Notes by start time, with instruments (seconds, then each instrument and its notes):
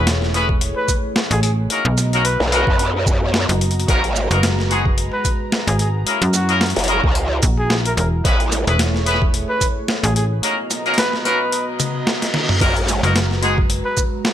Already playing: fm bass E1, analog synth pad A3 E4 G#4 C#5
0.07 snare, closed hi-hat
0.22 snare
0.34 horn section B3 C#4 E4 G#4 B4, snare, closed hi-hat
0.49 kick
0.61 closed hi-hat
0.76 trumpet B4
0.88 kick, closed hi-hat, shaker
1.16 snare
1.31 fm bass A1, trumpet G#4, closed hi-hat
1.43 trumpet G#4, closed hi-hat
1.70 horn section A#3 C#4 D#4 F#4 A#4, analog synth pad B3 F#4 D#5 A#5, closed hi-hat
1.85 fm bass B1
1.98 snare, closed hi-hat, shaker
2.13 horn section A#3 C#4 D#4 F#4 A#4, closed hi-hat
2.24 trumpet B4, closed hi-hat
2.40 wobble bass B1, snare
2.52 horn section A#3 C#4 D#4 F#4 A#4, trumpet B4, closed hi-hat
2.67 wobble bass F#2, kick
2.79 closed hi-hat
3.06 kick, shaker
3.34 snare
3.49 fm bass F#1, closed hi-hat
3.61 closed hi-hat
3.71 closed hi-hat
3.80 closed hi-hat
3.88 wobble bass G#1, analog synth pad G#3 B4, horn section A#3 B3 D#4 F#4 A#4, kick, closed hi-hat
4.04 closed hi-hat
4.16 snare, shaker
4.31 fm bass F#1, horn section A#3 B3 D#4 F#4 A#4, closed hi-hat
4.43 snare, closed hi-hat
4.59 snare
4.70 horn section G#3 B3 D#4 F#4 G#4, snare, closed hi-hat
4.86 kick
4.98 closed hi-hat
5.13 trumpet B4
5.25 kick, closed hi-hat, shaker
5.52 snare
5.67 fm bass G#1, trumpet G#4, closed hi-hat
5.79 trumpet G#4, closed hi-hat
6.06 horn section A#3 C#4 E4 G#4 A#4, analog synth pad E4 F#4, closed hi-hat
6.22 fm bass F#2, closed hi-hat
6.34 trumpet F#4, snare, closed hi-hat, shaker
6.49 horn section A#3 C#4 E4 G#4 A#4, closed hi-hat
6.61 snare, closed hi-hat
6.66 closed hi-hat
6.70 closed hi-hat
6.76 wobble bass F#1, snare, closed hi-hat
6.79 closed hi-hat
6.84 closed hi-hat
6.88 horn section A#3 C#4 E4 G#4 A#4, closed hi-hat
7.04 wobble bass C#2, kick
7.15 closed hi-hat
7.43 fm bass A#1, kick, closed hi-hat, shaker
7.59 trumpet G#4
7.70 snare
7.86 trumpet A#4, closed hi-hat
7.97 fm bass E1, trumpet A#4, closed hi-hat
8.24 wobble bass A1, analog synth pad A3 G#4 C#5, horn section B3 C#4 E4 G#4 B4, kick, closed hi-hat
8.40 closed hi-hat
8.52 snare, closed hi-hat, shaker
8.67 fm bass E1, horn section B3 C#4 E4 G#4 B4, closed hi-hat
8.79 snare, closed hi-hat
8.94 snare
9.06 horn section B3 C#4 E4 G#4 B4, closed hi-hat
9.14 snare
9.22 kick
9.34 closed hi-hat
9.49 trumpet B4
9.61 kick, closed hi-hat, shaker
9.88 snare
10.03 fm bass A1, trumpet G#4, closed hi-hat
10.16 trumpet G#4, closed hi-hat
10.43 horn section A#3 C#4 D#4 F#4 A#4, analog synth pad B3 F#4 D#5 A#5, closed hi-hat
10.71 snare, closed hi-hat, shaker
10.85 horn section A#3 C#4 D#4 F#4 A#4, closed hi-hat
10.94 trumpet B4, closed hi-hat
10.98 snare, closed hi-hat
11.03 closed hi-hat
11.13 snare
11.25 horn section A#3 C#4 D#4 F#4 A#4, trumpet B4, snare, closed hi-hat
11.52 closed hi-hat, reverse cymbal
11.80 closed hi-hat, high tom, shaker
12.07 snare
12.22 snare, closed hi-hat
12.34 snare
12.49 mid tom
12.60 wobble bass G#1, analog synth pad G#3 B4, horn section A#3 B3 D#4 F#4 A#4, kick, closed hi-hat, crash
12.76 closed hi-hat
12.88 snare, closed hi-hat, shaker
13.03 fm bass F#1, horn section A#3 B3 D#4 F#4 A#4, closed hi-hat
13.16 snare, closed hi-hat
13.31 snare
13.42 horn section G#3 B3 D#4 F#4 G#4, snare, closed hi-hat
13.58 kick
13.70 closed hi-hat
13.85 trumpet B4
13.97 kick, closed hi-hat, shaker
14.25 snare